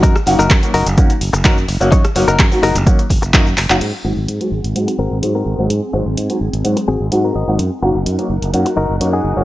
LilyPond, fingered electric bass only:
\new Staff \with { instrumentName = "Fingered electric bass" } { \clef bass \time 4/4 \key aes \mixolydian \tempo 4 = 127 ges,16 r16 ges,,16 ges,,16 ges,16 r16 ges,,16 ges,,16 ges,16 r16 ges,,16 ges,,16 ges,8 ges,,16 ges,,16 | ges,16 r16 ges,,16 ges,,16 ges,16 r16 ges,,16 ges,,16 ges,16 r16 ges,,16 ges,,16 ges,8 ges,,16 ges,,16 | aes,16 r16 aes,,16 aes,,16 aes,16 r16 aes,,16 aes,,16 aes,16 r16 aes,,16 aes,,16 aes,8 aes,,16 aes,,16 | aes,16 r16 aes,,16 aes,,16 aes,16 r16 aes,,16 aes,,16 aes,16 r16 aes,,16 aes,,16 aes,8 aes,,16 aes,,16 |
ges,16 r16 ges,,16 ges,,16 ges,16 r16 ges,,16 ges,,16 ges,16 r16 ges,,16 ges,,16 ges,8 ges,,16 ges,,16 | }